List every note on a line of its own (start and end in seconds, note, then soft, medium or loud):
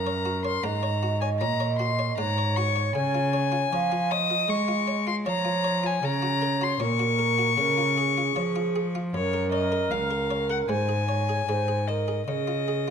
0.00 0.61 F#2 medium
0.00 0.63 F#2 medium
0.00 0.66 A#4 medium
0.00 0.44 A#5 medium
0.07 0.27 C#5 medium
0.25 0.46 F#4 medium
0.45 0.65 C#5 medium
0.45 0.65 C6 loud
0.63 1.37 G#2 medium
0.63 1.43 G#2 medium
0.63 2.20 D#5 medium
0.63 0.84 F#5 medium
0.63 1.20 A#5 loud
0.83 1.03 C#5 medium
1.03 1.23 F#4 medium
1.21 1.42 C#5 medium
1.21 1.29 G#5 medium
1.39 2.14 A#2 medium
1.39 2.18 A#2 medium
1.39 1.61 C#4 medium
1.39 1.78 A#5 loud
1.60 1.81 C#5 medium
1.78 2.00 F#4 medium
1.78 2.17 C6 medium
1.99 2.19 C#5 medium
2.17 2.91 G#2 medium
2.17 2.94 G#2 medium
2.17 3.72 C#5 medium
2.17 2.38 F#5 medium
2.17 2.58 A#5 loud
2.38 2.58 C#5 medium
2.56 2.77 F#4 medium
2.56 2.95 C#6 loud
2.76 2.95 C#5 medium
2.95 3.68 C#3 medium
2.95 4.13 G#5 loud
3.14 3.35 F4 medium
3.33 3.54 C#5 medium
3.52 3.73 F4 medium
3.72 4.48 F3 medium
3.72 4.45 F3 medium
3.72 3.93 C#5 medium
3.72 4.13 F5 medium
3.92 4.12 F4 medium
4.11 4.31 C#5 medium
4.11 4.99 D#5 medium
4.11 4.51 D#6 loud
4.30 4.50 F4 medium
4.48 5.21 G#3 medium
4.48 5.27 G#3 medium
4.48 5.07 C#6 loud
4.68 4.88 F4 medium
4.87 5.08 C#5 medium
5.07 5.27 F4 medium
5.07 5.15 C6 loud
5.26 6.03 F3 medium
5.26 5.99 F3 medium
5.26 5.99 C#5 medium
5.26 5.46 C#5 medium
5.26 5.88 A#5 loud
5.45 5.65 F4 medium
5.64 5.85 C#5 medium
5.83 6.03 F4 medium
5.83 6.06 G#5 loud
6.03 6.77 C#3 medium
6.03 6.79 C#3 medium
6.03 6.79 C#5 medium
6.03 6.65 A#5 loud
6.22 6.43 F#4 medium
6.42 6.62 A#4 medium
6.61 6.82 F#4 medium
6.61 6.83 C6 loud
6.80 7.54 A#2 medium
6.80 7.59 A#2 medium
6.80 7.56 A#4 medium
6.80 7.01 C#5 medium
6.80 8.94 C#6 loud
6.99 7.20 F#4 medium
7.19 7.39 A#4 medium
7.38 7.58 F#4 medium
7.57 8.31 C#3 medium
7.57 8.35 C#3 medium
7.57 7.98 A#4 medium
7.78 7.98 F4 medium
7.97 8.83 G#4 medium
7.97 8.18 G#4 medium
8.17 8.37 F4 medium
8.35 9.14 F3 medium
8.35 9.10 F3 medium
8.35 8.56 C#5 medium
8.56 8.76 F4 medium
8.76 8.96 G#4 medium
8.95 9.14 F4 medium
9.13 9.93 F#2 medium
9.13 9.88 F#2 medium
9.13 10.70 A#4 medium
9.13 9.50 C#5 loud
9.34 9.54 A#4 medium
9.52 9.73 C#5 medium
9.52 9.92 D#5 loud
9.72 9.92 A#4 medium
9.90 10.68 C#2 medium
9.90 10.65 C#2 medium
9.90 10.49 F5 medium
9.90 10.12 F#5 medium
10.11 10.31 A#4 medium
10.31 10.51 C#5 medium
10.50 10.69 A#4 medium
10.50 10.58 F#5 medium
10.69 11.46 G#2 medium
10.69 11.43 G#2 medium
10.69 10.88 G#3 medium
10.69 11.08 C5 medium
10.69 11.89 G#5 loud
10.89 11.09 G#4 soft
11.08 11.47 C#5 medium
11.08 11.29 C#5 soft
11.29 11.48 G#4 soft
11.47 12.25 G#2 medium
11.47 12.24 G#2 medium
11.47 11.67 G#3 medium
11.47 11.87 C5 medium
11.68 11.89 G#4 soft
11.87 12.27 A#4 medium
11.87 12.09 C5 soft
11.87 12.25 D#5 medium
12.08 12.28 G#4 soft
12.26 12.90 C#3 medium
12.26 12.90 G#4 medium
12.26 12.90 D#5 medium
12.47 12.68 F4 soft
12.68 12.89 G#4 soft